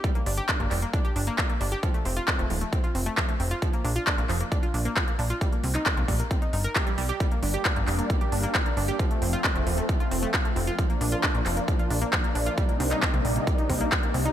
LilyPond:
<<
  \new Staff \with { instrumentName = "Synth pluck" } { \time 4/4 \key g \minor \tempo 4 = 134 g16 bes16 d'16 g'16 d'16 bes16 g16 bes16 d'16 g'16 d'16 bes16 g16 bes16 d'16 g'16 | f16 a16 c'16 f'16 c'16 a16 f16 a16 c'16 f'16 c'16 a16 f16 a16 c'16 f'16 | f16 bes16 d'16 f'16 d'16 bes16 f16 bes16 d'16 f'16 d'16 bes16 f16 bes16 d'16 f'16 | g16 bes16 c'16 ees'16 c'16 bes16 g16 bes16 c'16 ees'16 ees'16 bes'16 g'16 g16 g16 g'16 |
g16 bes16 d'16 g'16 d'16 bes16 g16 bes16 g16 g'16 d'16 bes16 g16 bes16 d'16 g'16 | f16 a16 c'16 f'16 c'16 a16 f16 a16 f16 f'16 c'16 a16 f16 a16 c'16 f'16 | f16 bes16 d'16 f'16 d'16 bes16 f16 bes16 f16 f'16 d'16 bes16 f16 bes16 d'16 f'16 | g16 bes16 c'16 ees'16 c'16 bes16 g16 bes16 g16 ees'16 c'16 bes16 g16 bes16 c'16 ees'16 | }
  \new Staff \with { instrumentName = "Analog synth pad" } { \time 4/4 \key g \minor << { r1 | r1 | r1 | r1 |
<g d'>1 | <f c'>1 | <f d'>1 | <c g ees'>1 | } \\ { r1 | r1 | r1 | r1 |
bes1 | a1 | bes1~ | bes1 | } >> }
  \new Staff \with { instrumentName = "Analog synth bass" } { \clef bass \time 4/4 \key g \minor r8 g,,16 r8 g,,16 f,,16 r8. g,,16 r8. g,,16 r16 | r8 f,,16 r8 f,,16 ees,,16 r8. f,,16 r8. f,,16 r16 | r8 bes,,16 r8 bes,,16 f,,16 r8. bes,,16 r8. bes,,16 r16 | r8 c,16 r8 c,16 bes,,16 r8. g,,16 r8. c,16 r16 |
r8 g,,16 r8 g,,16 f,,16 r8. g,,16 r8. g,,16 r16 | r8 f,,16 r8 f,,16 ees,,16 r8. f,,16 r8. f,,16 r16 | r8 bes,,16 r8 bes,,16 f,,16 r8. bes,,16 r8. bes,,16 r16 | r8 c,16 r8 c,16 bes,,16 r8. c,16 r8. c,16 r16 | }
  \new DrumStaff \with { instrumentName = "Drums" } \drummode { \time 4/4 <hh bd>16 hh16 hho16 hh16 <hc hh bd>16 hh16 <hc hho>16 hh16 <hh bd>16 hh16 hho16 hh16 <hc hh bd>16 hh16 hho16 hh16 | <hh bd>16 hh16 hho16 hh16 <hc hh bd>16 hh16 hho16 hh16 <hh bd>16 hh16 hho16 hh16 <hc hh bd>16 hh16 hho16 hh16 | <hh bd>16 hh16 hho16 hh16 <hc hh bd>16 hh16 <hc hho>16 hh16 <hh bd>16 hh16 hho16 hh16 <hc hh bd>16 hh16 hho16 hh16 | <hh bd>16 hh16 hho16 <hc hh>16 <hc hh bd>16 hh16 <hho bd>16 hh16 <hh bd>16 hh16 hho16 hh16 <hc hh bd>16 hh16 hho16 hh16 |
<hh bd>16 hh16 hho16 hh16 <hc hh bd>16 hh16 <hc hho>16 hh16 <hh bd>16 hh16 hho16 hh16 <hc hh bd>16 hh16 hho16 hh16 | <hh bd>16 hh16 hho16 hh16 <hc hh bd>16 hh16 hho16 hh16 <hh bd>16 hh16 hho16 hh16 <hc hh bd>16 hh16 hho16 hh16 | <hh bd>16 hh16 hho16 hh16 <hc hh bd>16 hh16 <hc hho>16 hh16 <hh bd>16 hh16 hho16 hh16 <hc hh bd>16 hh16 hho16 hh16 | <hh bd>16 hh16 hho16 <hc hh>16 <hc hh bd>16 hh16 hho16 hh16 <hh bd>16 hh16 <hho bd>16 hh16 <hc hh bd>16 hh16 hho16 hh16 | }
>>